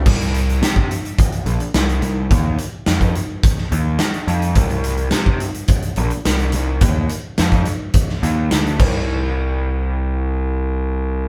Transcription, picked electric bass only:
\new Staff \with { instrumentName = "Picked electric bass" } { \clef bass \time 4/4 \key c \minor \tempo 4 = 106 c,4 c8 r4 bes,,16 r16 c,8 c,8 | ees,8 r8 f,8 r4 ees,8 r8 f,8 | c,4 c8 r4 bes,,16 r16 c,8 c,8 | ees,8 r8 f,8 r4 ees,8 d,8 c,8~ |
c,1 | }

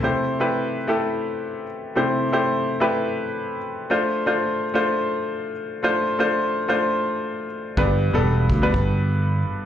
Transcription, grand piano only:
<<
  \new Staff \with { instrumentName = "Grand piano" } { \time 4/4 \key c \major \tempo 4 = 124 <a e' g' c''>8 r16 <a e' g' b'>8. r16 <a e' g' a'>4. r8. | <a e' g' c''>8 r16 <a e' g' c''>8. r16 <a e' g' b'>4. r8. | <a d' f' c''>8 r16 <a d' f' c''>8. r16 <a d' f' c''>4. r8. | <a d' f' c''>8 r16 <a d' f' c''>8. r16 <a d' f' c''>4. r8. |
<g b d' b'>8 r16 <g b d' a'>8. r16 <g b d' b'>4. r8. | }
  \new Staff \with { instrumentName = "Grand piano" } { \clef bass \time 4/4 \key c \major c4. r2 r8 | c4. r2 r8 | r1 | r1 |
g,4. r2 r8 | }
>>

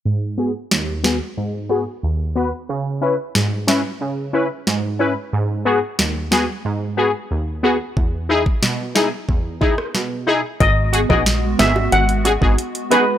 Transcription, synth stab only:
\new Staff \with { instrumentName = "Synth stab" } { \time 4/4 \key gis \minor \tempo 4 = 91 << { r8 <b fis' gis'>16 r8. <b fis' gis'>16 r8. <b fis' gis'>16 r8. <b fis' b'>16 r16 | r8 <cis' e' b'>16 r8. <cis' e' b'>16 r8. <cis' e' b'>16 r8. <cis' e' b'>16 r16 | r8 <b fis' gis'>16 r8. <b fis' gis'>16 r8. <b fis' gis'>16 r8. <b fis' gis'>16 r16 | r8 <dis' e' gis'>16 r8. <dis' e' gis'>16 r8. <dis' e' gis'>16 r8. <dis' e' gis'>16 r16 |
r8 <fis' gis'>16 <b dis' fis' gis'>16 r8 <b dis' fis' gis'>16 r8. <fis' gis'>16 <b dis' fis' gis'>16 r8 <b dis' fis' gis'>16 r16 | } \\ { gis,4 dis,4 gis,4 dis,4 | cis4 gis,4 cis4 gis,4 | gis,4 dis,4 gis,4 dis,4 | e,4 b,4 e,4 b,4 |
r1 | } >> }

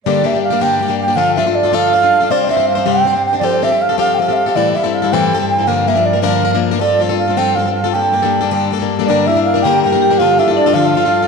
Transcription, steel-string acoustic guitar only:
\new Staff \with { instrumentName = "Steel-string acoustic guitar" } { \time 6/8 \key g \dorian \tempo 4. = 106 <g, d g bes d' g'>8 <g bes d' g'>16 <g bes d' g'>8 <g bes d' g'>16 <g, d g bes d' g'>8 <g bes d' g'>16 <g bes d' g'>8 <g bes d' g'>16 | <d f d' f' a'>8 <f d' f' a'>16 <d' f' a'>8 <d' f' a'>16 <d f d' f' a'>8 <f d' a'>16 <d' f' a'>8 <d' f' a'>16 | <c g c' d' c''>8 <g c' d' c''>16 <c' d' c''>8 <c' d' c''>16 <c g c' d' c''>8 <g c' d' c''>16 <c' d' c''>8 <c' d' c''>16 | <f c' g' a'>8 <f c' g' a'>16 <c' g' a'>8 <c' g' a'>16 <f c' g' a'>8 <f c' g' a'>16 <c' g' a'>8 <c' g' a'>16 |
<a, e g c' e' a'>8 <g c' e' a'>16 <g c' e' a'>8 <g c' e' a'>16 <a, e g c' e' a'>8 <g c' e' a'>16 <g c' e' a'>8 <g c' e' a'>16 | <g, d f bes d' bes'>8 <f bes d' bes'>16 <f bes d' bes'>8 <f bes d' bes'>16 <g, d f bes d' bes'>8 <f bes d' bes'>16 <f bes d' bes'>8 <f bes d' bes'>16 | <f c' f' a'>8 <f c' f' a'>16 <c' f' a'>8 <c' f' a'>16 <f c' f' a'>8 <f c' f' a'>16 <c' f' a'>8 <c' f' a'>16 | <g, d g bes d' a'>8 <g bes d' a'>16 <g bes d' a'>8 <g bes d' a'>16 <g, d g bes d' a'>8 <g bes d' a'>16 <g bes d' a'>8 <g bes d' a'>16 |
<g, d g bes d' bes'>8 <g bes d' bes'>16 <g bes d' bes'>8 <g bes d' bes'>16 <g, d g bes d' bes'>8 <g bes d' bes'>16 <g bes d' bes'>8 <g bes d' bes'>16 | <d f d' f' a'>8 <f d' f' a'>16 <d' f' a'>8 <d' f' a'>16 <d f d' f' a'>8 <f d' f' a'>16 <d' f' a'>8 <f' a'>16 | }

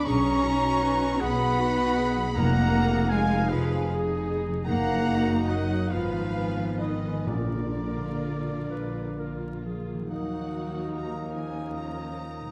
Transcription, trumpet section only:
\new Staff \with { instrumentName = "Trumpet section" } { \time 6/8 \key ees \minor \tempo 4. = 49 bes''4. fis''4. | ges''4 f''8 ces''8 r4 | ges''4 ees''8 ces''4 ces''8 | bes'2~ bes'8 r8 |
r2. | }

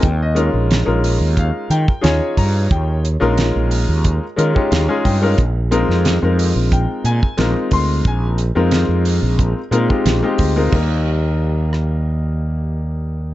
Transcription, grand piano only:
\new Staff \with { instrumentName = "Grand piano" } { \time 4/4 \key ees \mixolydian \tempo 4 = 90 << { g''16 ees''16 r4. f''8 g''8 aes''8 bes''8 | g''8 r2 ees''16 des''16 f''16 aes''16 g''8 | r2 g''8 aes''8 bes''8 c'''8 | aes''8 r2. r8 |
r1 | } \\ { r8 <aes des' ees' f' bes'>8. <aes des' ees' f' bes'>4. r16 <des' ees' f' aes' des''>4~ | <des' ees' f' aes' des''>8 r16 <aes des' ees' f' bes'>4. r16 <aes des' ees' f' bes'>16 <aes des' ees' f' g'>8 <aes des' ees' f' aes'>8 <aes des' ees' f' bes'>16 | r8 <aes c' ees' f' bes'>8. <aes c' ees' f' bes'>4. r16 <aes c' ees' f' bes'>4~ | <aes c' ees' f' bes'>8 r16 <aes c' ees' f' bes'>4. r16 <aes c' ees' f' bes'>16 <aes c' ees' f' g'>8 <aes c' ees' f' g'>8 <aes c' ees' f' bes'>16 |
<g bes ees' g' bes'>1 | } >> }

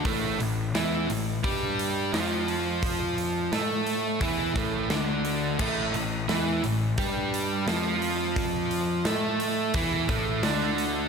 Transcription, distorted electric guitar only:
\new Staff \with { instrumentName = "Distorted electric guitar" } { \clef bass \time 4/4 \key c \lydian \tempo 4 = 87 <a, a>8 a,8 <e e'>8 a,8 <g g'>4 <f f'>4~ | <f f'>4 <a a'>4 <e e'>8 <a, a>8 <d d'>4 | <a, a>8 a,8 <e e'>8 a,8 <g g'>4 <f f'>4~ | <f f'>4 <a a'>4 <e e'>8 <a, a>8 <d d'>4 | }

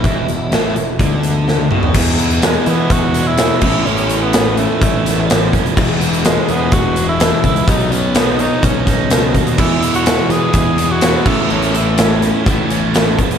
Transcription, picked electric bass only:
\new Staff \with { instrumentName = "Picked electric bass" } { \clef bass \time 4/4 \key e \mixolydian \tempo 4 = 126 e,,8 e,,8 a,,8 e,,8 d,4. b,,8 | \key e \major e,4. e8 e,4. a,,8 | a,,2 a,,4. f,,8 | e,,4. e,8 e,,4. cis,8 |
b,,2 b,,4 cis,8 dis,8 | e,4. e8 e,4. a,,8 | a,,2 a,,4. e,8 | }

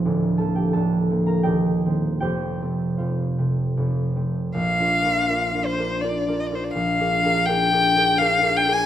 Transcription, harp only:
\new Staff \with { instrumentName = "Harp" } { \time 3/4 \key bes \major \tempo 4 = 82 << { f''8 <a' a''>16 <g' g''>16 <a' a''>8. <bes' bes''>16 <g' ees'' g''>4 | <g' c'' g''>4 <f' c'' f''>2~ | <f' c'' f''>2.~ | <f' c'' f''>2. | } \\ { <d,, d, f>8 <f bes>8 <d,, d,>8 <f bes>8 <ees,, ees,>8 <ees bes c'>8 | <f,, f,>8 <c a c'>8 <f,, f,>8 <c a c'>8 <f,, f,>8 <c a c'>8 | \tuplet 3/2 { bes,,8 <d' f' bes'>8 <d' f' bes'>8 <d' f' bes'>8 <d' f' bes'>8 <d' f' bes'>8 <d' f' bes'>8 <d' f' bes'>8 <d' f' bes'>8 } | \tuplet 3/2 { bes,,8 <d' aes' bes'>8 <d' aes' bes'>8 <d' aes' bes'>8 <d' aes' bes'>8 <d' aes' bes'>8 <d' aes' bes'>8 <d' aes' bes'>8 <d' aes' bes'>8 } | } >> }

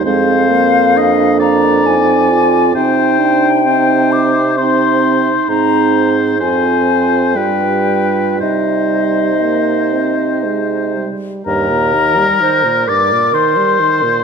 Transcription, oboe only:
\new Staff \with { instrumentName = "Oboe" } { \time 3/4 \key c \minor \tempo 4 = 65 c''4 ees''8 d''4. | c''4 c''4 c''4 | c''4 c''4 b'4 | c''2~ c''8 r8 |
\key ees \major bes'4. d''8 c''4 | }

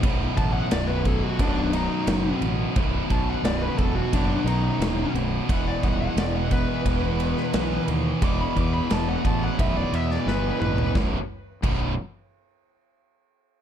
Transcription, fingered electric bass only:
\new Staff \with { instrumentName = "Fingered electric bass" } { \clef bass \time 4/4 \key b \major \tempo 4 = 88 b,,,8 a,,8 b,,,4 b,,,4 fis,,8 a,,8 | b,,,8 b,,8 b,,,8 e,,8 fis,,8 b,,8 dis,,8 b,,,8 | e,,8 dis,,8 e,,4 e,,4 b,,8 dis,8 | e,,8 e,8 e,,8 a,,8 b,,,8 e,8 g,,8 a,,8 |
b,,,8 r8 b,,,8 r2 r8 | }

